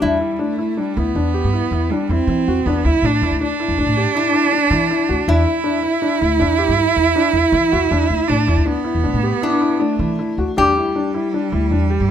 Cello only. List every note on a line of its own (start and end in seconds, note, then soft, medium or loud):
0.02 0.42 G3 medium
0.41 0.79 A3 medium
0.78 0.98 G3 medium
0.97 1.91 B3 medium
1.90 2.12 G3 medium
2.10 2.67 C4 medium
2.65 2.86 B3 medium
2.85 3.07 E4 medium
3.05 3.42 D4 medium
3.42 5.31 D4 loud
5.29 8.29 E4 loud
8.28 8.67 D4 medium
8.66 9.82 B3 medium
9.80 10.38 A3 medium
10.57 12.11 G3 medium